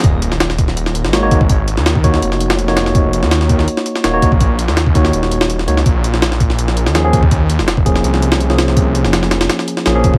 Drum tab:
HH |x-x-x-x-x-x-x-x-|x-x-x-x-x-x-x-x-|x-x-x-x-x-x-x-x-|x-x-x-x-x-x-x-x-|
SD |---ooo-o-o-oo---|---oo--o-o-o-ooo|---ooo-o-o-oo---|---oo--o-o-o-o-o|
BD |o-----o-------oo|o----oo---------|o-----o-------oo|o----oo---------|

HH |x-x-x-x-x-x-x-x-|x-x-x-x-x-x-x-x-|x-x-x-xxx-x-x-x-|
SD |---ooo-o-o-oo---|---oo--o-o-o-ooo|---ooooooo-oo---|
BD |o-----o-------oo|o----oo---------|o-------------oo|